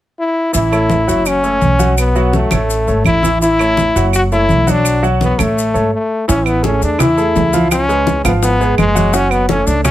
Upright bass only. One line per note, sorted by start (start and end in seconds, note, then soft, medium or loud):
0.54 1.05 A1 medium
1.08 1.59 F#1 medium
1.62 2.46 B1 medium
2.51 2.85 A1 medium
2.87 3.05 G#1 medium
3.05 3.90 A1 medium
3.96 4.46 F#1 medium
4.50 5.33 B1 medium
5.40 5.73 A1 medium
5.75 5.92 G#1 medium
6.29 6.79 A1 loud
6.82 7.32 E2 medium
7.36 8.19 C#2 medium
8.25 8.75 G#1 medium
8.78 9.62 F#1 medium
9.67 9.91 C#2 medium